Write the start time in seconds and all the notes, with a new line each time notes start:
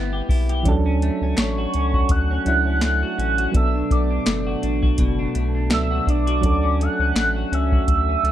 Already playing: G1 G3 B3 C4 E4 G4 B4
0.13 G4
0.29 B1 E4, kick, open hi-hat
0.49 G4, closed hi-hat
0.63 D2 E3 C#4 D4, kick, closed hi-hat
0.69 F#3 A4
0.86 C#4
1.02 A3, closed hi-hat
1.21 C#2 C#4
1.37 A1 A3 C#6, snare, clap, closed hi-hat
1.58 F#4
1.74 C#2 C#4, closed hi-hat
1.94 F#4, kick
2.09 D2 F#6, kick, closed hi-hat
2.31 C#4
2.45 C#2 F#3 A3 C#4 D4 E4 F#6, closed hi-hat
2.66 C#4
2.82 A3, snare, clap, closed hi-hat
3.03 F#4
3.18 A1 C#4, closed hi-hat
3.38 F#4, closed hi-hat
3.52 B1 B2 F#3 B3 D4, kick, closed hi-hat
3.56 A4 E6
3.75 D4
3.91 B1 A3 D6, kick, closed hi-hat
4.10 D4
4.26 F#1 A3, snare, clap, closed hi-hat
4.46 F#4
4.62 A1 D4, closed hi-hat
4.83 F#4, kick
4.98 F#1 B2, kick, closed hi-hat
5.19 D4
5.35 B1 A3, closed hi-hat
5.54 D4
5.70 C#2 F#3 A3 B3 D4 A4 E6, snare, clap, closed hi-hat
5.91 F#4
6.07 B1 D4 D6, kick, closed hi-hat
6.27 F#4, closed hi-hat
6.41 D2 F#3 C#4 D4, kick, closed hi-hat
6.46 A4
6.63 C#4
6.80 A3 F#6, closed hi-hat
6.99 C#2 C#4
7.16 A1 A3, snare, clap, closed hi-hat
7.36 F#4
7.52 C#2 C#4 E6, closed hi-hat
7.72 F#4, kick
7.88 D2, kick, closed hi-hat
8.09 C#4
8.24 C#2 A3, closed hi-hat